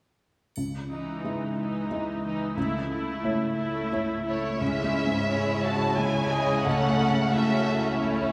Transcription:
0.56 C#2, triangle
0.90 E3 D#4
1.24 G#3 E4 D#5
1.57 E3 D#4
1.91 G#3 E4 D#5
2.24 E3 D#4
2.57 C#2 A3 E4
2.90 A3 E4
3.24 A3 E4 C#5
3.57 A3 E4
3.92 A3 E4 C#5
4.26 A3 E4 C#5
4.61 C#2 C#3 G#3 C#4 E4 E5
4.83 G#3
4.96 G#3
5.07 G#2
5.29 E4 G#4 C#5
5.52 C#5
5.64 F#4 A5
5.74 E4
5.97 G#3 E4 C#5 G#5
6.21 E4
6.32 D#5
6.44 C#5
6.64 C#2 A3 C#4 A4 C#5 F#5
6.89 A3
6.98 A4
7.11 C#3
7.31 A3 C#4 E4 F#4 A4 E5
7.54 C#5
7.77 E4
7.97 A3 E4 C#5
8.21 E4

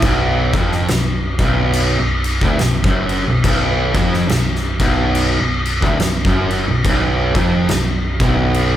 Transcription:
0.02 B0 B1, kick, crash
0.53 F1 F2, kick, crash
0.72 snare
0.88 B0 B1, snare, crash
1.39 B0 B1, kick, crash
1.73 crash
1.99 B0 B1
2.24 crash
2.41 D1 D2, kick
2.59 B0 B1, snare, crash
2.84 F#1 F#2, kick
3.09 crash
3.27 B0 B1
3.44 B0 B1, kick, crash
3.95 F1 F2, kick, crash
4.14 snare
4.29 B0 B1, snare, crash
4.56 snare
4.80 B0 B1, kick, crash
5.15 crash
5.39 B0 B1
5.66 crash
5.82 D1 D2, kick
5.99 B0 B1, snare, crash
6.25 F#1 F#2, kick
6.51 crash
6.67 B0 B1
6.85 B0 B1, kick, crash
7.35 F1 F2, kick, crash
7.69 B0 B1, snare, crash
8.20 B0 B1, kick, crash
8.54 crash

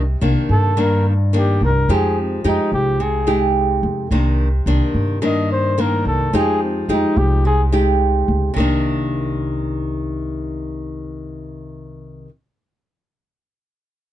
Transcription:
Already playing: C2 C3
0.21 C2 D#3 A#3 D4
0.49 G2 A4
0.77 G2 D#3 A#3 D4 A#4
1.09 D4
1.33 D#3 A#3 D4
1.37 G4
1.60 C2 A#4
1.88 F2 F3 G#3 D#4 G4
1.94 G#4
2.21 C4
2.44 F2 G#3 D#4 G4
2.72 C2 G4
3.00 C3 G#4
3.27 G#3 D#4 G4
3.83 F2
4.11 C2 C3 D#3 A#3 D4
4.66 C2 D#3 A#3 D4
4.94 G2
5.22 G2 D#3 A#3 D4 D#5
5.52 C5
5.78 D#3 A#3 D4 A#4
6.05 C2 A4
6.33 F2 F3 G#3 D#4 G4 G#4
6.63 C4
6.88 F2 G#3 D#4 G4
7.16 C2 G4
7.45 C3 G#4
7.72 G#3 D#4 G4
8.28 C#2
8.54 C2 C3 D#3
8.58 A#3 D4

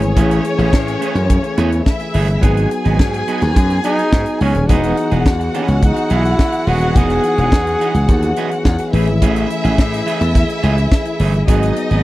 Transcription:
Already playing: C#3 E3 A3 C#4 G#4 C#5
0.02 G#1, muted clean electric guitar stroke, closed hi-hat
0.16 A1 E3 A3 C#4 G#4, kick, closed hi-hat
0.31 closed hi-hat
0.45 muted clean electric guitar stroke, closed hi-hat
0.58 A1 E3 A3 C#4 G#4, closed hi-hat
0.73 A2, kick, snare
0.87 muted clean electric guitar stroke, closed hi-hat
1.01 E3 A3 C#4 G#4, closed hi-hat
1.15 F#2, muted clean electric guitar stroke, closed hi-hat
1.29 muted clean electric guitar stroke, kick, closed hi-hat
1.43 muted clean electric guitar stroke, closed hi-hat
1.57 E2 E3 A3 C#4 G#4, closed hi-hat
1.71 muted clean electric guitar stroke, closed hi-hat
1.86 E4 E5, kick, snare
2.00 muted clean electric guitar stroke, snare, closed hi-hat
2.14 G1 E3 A3 C#4 G#4, open hi-hat
2.28 muted clean electric guitar stroke, closed hi-hat
2.41 G#1 F#3 B3 D#4 F#4 G#4 G#5, kick, closed hi-hat
2.57 closed hi-hat
2.71 muted clean electric guitar stroke, closed hi-hat
2.85 G#1 F#3 B3 D#4 G#4, closed hi-hat
2.99 G#2, kick, snare
3.13 muted clean electric guitar stroke, closed hi-hat
3.28 F#3 B3 D#4 G#4, closed hi-hat
3.42 D#2, muted clean electric guitar stroke, closed hi-hat
3.56 F#2, muted clean electric guitar stroke, kick, closed hi-hat
3.70 muted clean electric guitar stroke, closed hi-hat
3.84 F#3 B3 D#4 G#4, closed hi-hat
3.98 muted clean electric guitar stroke, closed hi-hat
4.12 G#2, kick, snare
4.26 muted clean electric guitar stroke, closed hi-hat
4.40 C#2 F#3 B3 C#4 D#4 G#4, open hi-hat
4.55 D#1, muted clean electric guitar stroke, closed hi-hat
4.68 E1 E3 B3 D#4 F#4 G#4 D#5 F#5, kick, closed hi-hat
4.83 closed hi-hat
4.97 muted clean electric guitar stroke, closed hi-hat
5.11 E1 E3 B3 D#4 G#4, closed hi-hat
5.26 E2, kick, snare
5.40 muted clean electric guitar stroke, closed hi-hat
5.54 E3 B3 C#4 D#4 G#4, closed hi-hat
5.68 C#2, muted clean electric guitar stroke, closed hi-hat
5.82 D#4, muted clean electric guitar stroke, kick, closed hi-hat
5.96 muted clean electric guitar stroke, closed hi-hat
6.10 B1 E3 B3 D#4 E4 G#4, closed hi-hat
6.24 muted clean electric guitar stroke, closed hi-hat
6.39 muted clean electric guitar stroke, kick, snare
6.52 muted clean electric guitar stroke, closed hi-hat
6.67 D#1 E3 B3 D#4 F#4 G#4, open hi-hat
6.81 E3 B3 D#4 G#4, closed hi-hat
6.93 E1 E3 B3 C#4 D#4 G#4, kick, closed hi-hat
6.98 G#4
7.10 closed hi-hat
7.23 muted clean electric guitar stroke, closed hi-hat
7.38 E1 E3 B3 D#4 G#4, closed hi-hat
7.52 E2, kick, snare
7.67 muted clean electric guitar stroke, closed hi-hat
7.81 E3 B3 D#4 G#4, closed hi-hat
7.94 C#2, muted clean electric guitar stroke, closed hi-hat
8.08 D#2, muted clean electric guitar stroke, kick, closed hi-hat
8.22 muted clean electric guitar stroke, closed hi-hat
8.36 E3 B3 D#4 G#4, closed hi-hat
8.51 muted clean electric guitar stroke, closed hi-hat
8.65 E2, muted clean electric guitar stroke, kick, snare
8.78 muted clean electric guitar stroke, closed hi-hat
8.92 A1 C#3 E3 A3 C#4 E4 G#4 E5, open hi-hat
9.07 G#1, muted clean electric guitar stroke, closed hi-hat
9.22 A1 E3 A3 C#4 G#4, kick, closed hi-hat
9.36 closed hi-hat
9.50 muted clean electric guitar stroke, closed hi-hat
9.64 A1 E3 A3 C#4 G#4, closed hi-hat
9.78 A2, kick, snare
9.92 muted clean electric guitar stroke, closed hi-hat
10.06 E3 A3 C#4 G#4, closed hi-hat
10.21 E2, muted clean electric guitar stroke, closed hi-hat
10.34 muted clean electric guitar stroke, kick, closed hi-hat
10.49 muted clean electric guitar stroke, closed hi-hat
10.63 C#2 E3 A3 C#4 G#4, closed hi-hat
10.77 muted clean electric guitar stroke, closed hi-hat
10.92 kick, snare
11.05 muted clean electric guitar stroke, closed hi-hat
11.19 G1 E3 A3 C#4 G#4, open hi-hat
11.34 muted clean electric guitar stroke, closed hi-hat
11.46 G#1 D#3 F#3 B3 D#4 F#4 G#4 D#5, kick, closed hi-hat
11.63 closed hi-hat
11.76 muted clean electric guitar stroke, closed hi-hat
11.91 G#1 F#3 B3 D#4 G#4, closed hi-hat

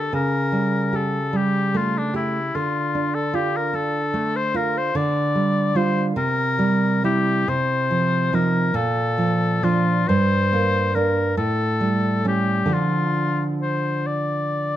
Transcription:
Already playing: G4 A4
0.13 C#3 A#4
0.52 G3
0.93 G4 A4
1.33 G3 G4
1.74 A3 F4
1.98 D4
2.14 E4 G4
2.55 D3 F4
2.95 D4
3.15 A4
3.34 F4 G4
3.57 A#4
3.73 D4 A4
4.14 A3
4.36 C5
4.54 F4 A#4
4.77 C5
4.95 D3 D5
5.35 G3
5.75 G3 F4 C5
6.16 C3 A#4
6.59 G3
7.04 G3 E4 G4
7.48 C3 C5
7.91 F3
8.33 F3 D#4 A#4
8.74 A#2 A4
9.18 F3
9.63 F3 D4 F4
10.08 G2 C5
10.53 A#3
10.95 A#3 D4 A#4
11.37 A2 A4
11.81 G3
12.25 G3 C#4 G4
12.66 D3 F3 D4
12.73 F4
13.62 C5
14.06 D5

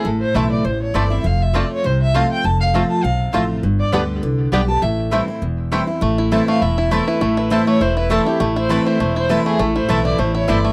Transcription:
0.05 A1 A2 A4
0.21 C5
0.34 B1 E3 A3 C4 E4 C5 E5 A5
0.52 D5
0.65 A1 E2 C5
0.82 C#5
0.94 G1 E3 A3 C4 E4 C5 D5 A5
1.10 C4 E4 E5
1.24 F1 F2 F5
1.42 E5
1.53 F3 A3 C4 F4 C5 D5 A5
1.73 C#5
1.84 C2 C3 C5
2.02 E5
2.14 F3 A3 C4 F4 C5 F5 A5
2.31 G5
2.44 F1 F2 A5
2.61 F5
2.74 F3 A3 C4 F4 C5 A5
2.90 A5
3.03 B1 C3 F5
3.33 A1 F3 A3 C4 F4 C5 A5
3.63 G1 G2
3.80 D5
3.92 D2 D3 G3 B3 D4 G4 B4 D5 G5
4.22 C2 D3
4.52 B1 D3 G3 B3 D4 G4 D5 G5
4.68 B3 G4 A5
4.82 A1 A2 E5
5.11 E3 G3 A3 C4 E4 C5 G5
5.28 C4 E4
5.42 E1 E2
5.71 E3 G3 A3 C4 E4 C5 G5
5.87 C4 E4
6.01 A1 A2 A3
6.18 E4
6.31 E3 A3 C4 E4 C5 A5
6.48 A3 F5
6.62 E1 E4 E5
6.78 E4
6.91 E3 A3 C4 E4 C5 A5
7.07 C4 E4 B4
7.21 A1 A2 A3 A4
7.37 E4 B4
7.50 E3 A3 C4 E4 C5 A5
7.67 A3 C#5
7.81 E1 E2 E4 C5
7.97 E4 B4
8.10 E3 A3 C4 E4 A4 C5 A5
8.25 C4 E4 G4
8.40 A1 A2 A3 A4
8.56 E4 C5
8.69 E3 A3 C4 E4 B4 C5 A5
8.86 E4 C5
8.99 E1 E2 A3
9.16 E4 C5
9.29 E3 A3 C4 E4 B4 C5 A5
9.46 A3 G#4
9.59 A1 A2 A3 A4
9.76 E4 C5
9.88 B1 E3 A3 C4 E4 C5 E5 A5
10.05 E4 D5
10.18 A1 E2 A3 C5
10.35 E4 C#5
10.48 G1 E3 A3 C4 E4 C5 D5 A5
10.65 A3 E5

